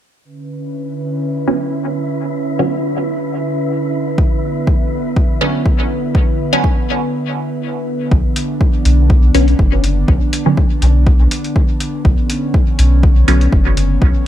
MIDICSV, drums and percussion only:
0, 0, Header, 1, 2, 480
1, 0, Start_track
1, 0, Key_signature, 2, "minor"
1, 0, Tempo, 491803
1, 241, Time_signature, 4, 2, 24, 8
1, 13930, End_track
2, 0, Start_track
2, 0, Title_t, "Drums"
2, 4081, Note_on_c, 9, 36, 112
2, 4178, Note_off_c, 9, 36, 0
2, 4561, Note_on_c, 9, 36, 103
2, 4658, Note_off_c, 9, 36, 0
2, 5041, Note_on_c, 9, 36, 110
2, 5138, Note_off_c, 9, 36, 0
2, 5521, Note_on_c, 9, 36, 101
2, 5618, Note_off_c, 9, 36, 0
2, 6001, Note_on_c, 9, 36, 114
2, 6098, Note_off_c, 9, 36, 0
2, 6480, Note_on_c, 9, 36, 104
2, 6578, Note_off_c, 9, 36, 0
2, 7920, Note_on_c, 9, 36, 114
2, 8018, Note_off_c, 9, 36, 0
2, 8160, Note_on_c, 9, 42, 80
2, 8258, Note_off_c, 9, 42, 0
2, 8401, Note_on_c, 9, 36, 100
2, 8498, Note_off_c, 9, 36, 0
2, 8641, Note_on_c, 9, 42, 65
2, 8738, Note_off_c, 9, 42, 0
2, 8881, Note_on_c, 9, 36, 116
2, 8978, Note_off_c, 9, 36, 0
2, 9121, Note_on_c, 9, 42, 80
2, 9219, Note_off_c, 9, 42, 0
2, 9250, Note_on_c, 9, 42, 30
2, 9348, Note_off_c, 9, 42, 0
2, 9360, Note_on_c, 9, 36, 95
2, 9458, Note_off_c, 9, 36, 0
2, 9601, Note_on_c, 9, 42, 65
2, 9698, Note_off_c, 9, 42, 0
2, 9840, Note_on_c, 9, 36, 114
2, 9938, Note_off_c, 9, 36, 0
2, 10081, Note_on_c, 9, 42, 84
2, 10179, Note_off_c, 9, 42, 0
2, 10320, Note_on_c, 9, 36, 102
2, 10418, Note_off_c, 9, 36, 0
2, 10561, Note_on_c, 9, 42, 70
2, 10659, Note_off_c, 9, 42, 0
2, 10800, Note_on_c, 9, 36, 115
2, 10898, Note_off_c, 9, 36, 0
2, 11041, Note_on_c, 9, 42, 82
2, 11138, Note_off_c, 9, 42, 0
2, 11170, Note_on_c, 9, 42, 32
2, 11268, Note_off_c, 9, 42, 0
2, 11280, Note_on_c, 9, 36, 101
2, 11378, Note_off_c, 9, 36, 0
2, 11521, Note_on_c, 9, 42, 68
2, 11619, Note_off_c, 9, 42, 0
2, 11760, Note_on_c, 9, 36, 112
2, 11858, Note_off_c, 9, 36, 0
2, 12001, Note_on_c, 9, 42, 85
2, 12099, Note_off_c, 9, 42, 0
2, 12241, Note_on_c, 9, 36, 107
2, 12338, Note_off_c, 9, 36, 0
2, 12481, Note_on_c, 9, 42, 75
2, 12579, Note_off_c, 9, 42, 0
2, 12721, Note_on_c, 9, 36, 115
2, 12818, Note_off_c, 9, 36, 0
2, 12961, Note_on_c, 9, 42, 82
2, 13059, Note_off_c, 9, 42, 0
2, 13090, Note_on_c, 9, 42, 33
2, 13188, Note_off_c, 9, 42, 0
2, 13201, Note_on_c, 9, 36, 105
2, 13298, Note_off_c, 9, 36, 0
2, 13441, Note_on_c, 9, 42, 68
2, 13539, Note_off_c, 9, 42, 0
2, 13681, Note_on_c, 9, 36, 116
2, 13778, Note_off_c, 9, 36, 0
2, 13930, End_track
0, 0, End_of_file